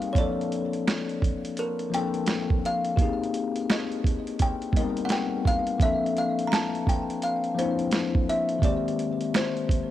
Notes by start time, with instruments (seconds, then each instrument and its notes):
Already playing: tine electric piano G3 A#3 C4 D#4 G4, kalimba D#5
0.02 closed hi-hat
0.13 tine electric piano F3 A#3, kalimba C#5, kick, closed hi-hat
0.17 tine electric piano C4 D4 A4, kalimba D5
0.41 closed hi-hat
0.52 closed hi-hat
0.73 closed hi-hat
0.87 finger snap, snare, closed hi-hat
1.09 closed hi-hat
1.22 kick, closed hi-hat
1.45 closed hi-hat
1.57 kalimba A#4, closed hi-hat
1.79 closed hi-hat
1.90 tine electric piano F3 A#3 C4, closed hi-hat
1.95 tine electric piano D4 A4, kalimba G5
2.14 closed hi-hat
2.27 finger snap, snare, closed hi-hat
2.50 kick
2.65 kalimba F5, closed hi-hat
2.85 closed hi-hat
2.96 tine electric piano A#3 B3 G4, kick, closed hi-hat
3.01 tine electric piano D#4 G#4
3.06 tine electric piano C4
3.24 closed hi-hat
3.34 closed hi-hat
3.56 closed hi-hat
3.70 kalimba D#5, finger snap, snare, closed hi-hat
3.92 closed hi-hat
4.04 kick, closed hi-hat
4.27 closed hi-hat
4.39 kalimba G5, kick, closed hi-hat
4.62 closed hi-hat
4.72 tine electric piano G3 A#3 B3, kick
4.76 tine electric piano D#4 A#4, kalimba D#5, closed hi-hat
4.82 tine electric piano C4
4.97 closed hi-hat
5.05 kalimba F#5, closed hi-hat
5.10 kalimba G5, finger snap, snare
5.45 kalimba F5, kick, closed hi-hat
5.67 closed hi-hat
5.78 tine electric piano F3 A#3 C4, kick, closed hi-hat
5.82 tine electric piano D4 A4, kalimba E5
6.06 closed hi-hat
6.17 kalimba F5, closed hi-hat
6.39 closed hi-hat
6.47 kalimba A#5
6.52 kalimba A5, finger snap, snare, closed hi-hat
6.75 closed hi-hat
6.87 kalimba G5, kick, closed hi-hat
7.10 closed hi-hat
7.22 kalimba F5, closed hi-hat
7.44 closed hi-hat
7.55 tine electric piano F3 A#3 C4
7.59 tine electric piano D4 E4, kalimba C5, closed hi-hat
7.79 closed hi-hat
7.91 finger snap, snare, closed hi-hat
8.15 kick
8.29 kalimba E5, closed hi-hat
8.49 closed hi-hat
8.59 tine electric piano D#3 G#3 A#3, kick
8.63 tine electric piano C4 G4, kalimba D5, closed hi-hat
8.88 closed hi-hat
8.99 closed hi-hat
9.20 closed hi-hat
9.34 kalimba C5, finger snap, snare, closed hi-hat
9.57 closed hi-hat
9.69 kick, closed hi-hat